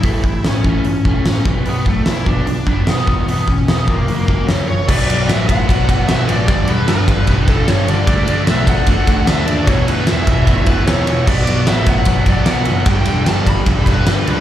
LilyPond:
<<
  \new Staff \with { instrumentName = "Lead electric guitar" } { \time 4/4 \key b \minor \tempo 4 = 150 e'4 cis'2~ cis'8 r8 | b8 a8 e'8 d'8 d'8 d'8 b4 | b8 cis'8 b8 ais4 ais'8 cis''8 cis''8 | d''4 e''8 fis''4. e''8 d''8 |
d''8 b'8 b'4. a'8 cis''8 d''8~ | d''4 e''8 fis''4. e''8 d''8 | cis''8 b'8 e''4. b'8 cis''4 | d''4 e''8 fis''4 d''8 fis''4 |
g''4 a''8 b''4 b'4 b'8 | }
  \new Staff \with { instrumentName = "Tonewheel organ" } { \time 4/4 \key b \minor << { a''2.~ a''8 b''8~ | b''1~ | b''2 ais''2 | d''1 |
a'1 | e''1 | fis'1 | d''1 |
a'1 | } \\ { <e' cis''>2.~ <e' cis''>8 <fis' d''>8~ | <fis' d''>2.~ <fis' d''>8 <g' e''>8~ | <g' e''>2 <fis' cis''>2 | <b fis'>1 |
<g d'>1 | d'1 | <e b>1 | fis'1 |
<g d'>1 | } >> }
  \new Staff \with { instrumentName = "Distorted electric guitar" } { \clef bass \time 4/4 \key b \minor r1 | r1 | r1 | <b, fis b>8 <b, fis b>8 <b, fis b>8 <b, fis b>8 <b, fis b>8 <b, fis b>8 <b, fis b>8 <b, fis b>8 |
<g, d g>8 <g, d g>8 <g, d g>8 <g, d g>8 <g, d g>8 <g, d g>8 <g, d g>8 <g, d g>8 | <d a d'>8 <d a d'>8 <d a d'>8 <d a d'>8 <d a d'>8 <d a d'>8 <d a d'>8 <d a d'>8 | <e, b, e>8 <e, b, e>8 <e, b, e>8 <e, b, e>8 <e, b, e>8 <e, b, e>8 <e, b, e>8 <e, b, e>8 | <b, fis b>8 <b, fis b>8 <b, fis b>8 <b, fis b>8 <b, fis b>8 <b, fis b>8 <b, fis b>8 <b, fis b>8 |
<g, d g>8 <g, d g>8 <g, d g>8 <g, d g>8 <g, d g>8 <g, d g>8 <g, d g>8 <g, d g>8 | }
  \new Staff \with { instrumentName = "Overdriven electric guitar" } { \clef bass \time 4/4 \key b \minor <a, e a>8 <a, e>8 <a, e>8 <a, e a>8 <a, e>8 <a, e a>8 <a, e>8 <b, fis b>8 | <b, fis b>8 <b, fis>8 <b, fis>8 <b, fis b>8 <b, fis>8 <b, fis b>8 <b, fis>8 <e, b, e>8 | <e, b, e>8 <e, b,>8 <e, b,>8 <e, b, e>8 <fis, cis fis>8 <fis, cis fis>8 <fis, cis>8 <fis, cis>8 | <b, fis b>2 <b, fis b>2 |
<g, d g>2 <g, d g>2 | <d a d'>2 <d a d'>2 | <e, b, e>2 <e, b, e>2 | <b, fis b>2 <b, fis b>2 |
<g, d g>2 <g, d g>2 | }
  \new Staff \with { instrumentName = "Picked electric bass" } { \clef bass \time 4/4 \key b \minor a,,8 a,,8 a,,8 a,,8 a,,8 e,,8 a,8 b,,8 | b,,8 b,,8 b,,8 b,,8 b,,8 fis,,8 b,8 e,,8 | e,,8 e,,8 e,,8 e,,8 fis,,8 cis,8 fis,8 fis,,8 | b,,8 b,,8 a,,8 a,8 b,,8 b,,8 b,,8 a,,8 |
g,,8 e,,8 g,,8 g,,8 e,,4 g,,8 g,,8 | d,8 d,8 b,,8 b,8 d,8 d,8 d,8 dis,8 | e,,8 d,8 e,,8 e,,8 d,4 e,,8 e,,8 | b,,8 b,,8 a,,8 a,8 b,,8 b,,8 b,,8 fis,,8 |
g,,8 e,,8 g,,8 g,,8 e,,4 g,,8 cis,8 | }
  \new DrumStaff \with { instrumentName = "Drums" } \drummode { \time 4/4 <hho bd>8 bd8 <hho sn>8 bd8 hho8 bd8 <hho sn>8 bd8 | hho8 bd8 <hho sn>8 bd8 hho8 bd8 <hho sn>8 bd8 | hho8 bd8 <hho sn>8 bd8 hho8 bd8 <hho sn>4 | <cymc bd>8 cymr8 <cymr sn>8 <bd cymr>8 <bd cymr>8 <bd cymr>8 <cymr sn>8 cymr8 |
<bd cymr>8 cymr8 <cymr sn>8 <bd cymr>8 <bd cymr>8 <bd cymr>8 <cymr sn>8 cymr8 | <bd cymr>8 cymr8 <cymr sn>8 <bd cymr>8 <bd cymr>8 <bd cymr>8 <cymr sn>8 cymr8 | <bd cymr>8 cymr8 <cymr sn>8 <bd cymr>8 <bd cymr>8 <bd cymr>8 <cymr sn>8 cymr8 | <cymc bd>8 cymr8 <cymr sn>8 <bd cymr>8 <bd cymr>8 <bd cymr>8 <cymr sn>8 cymr8 |
<bd cymr>8 cymr8 <cymr sn>8 <bd cymr>8 <bd cymr>8 <bd cymr>8 <cymr sn>8 cymr8 | }
>>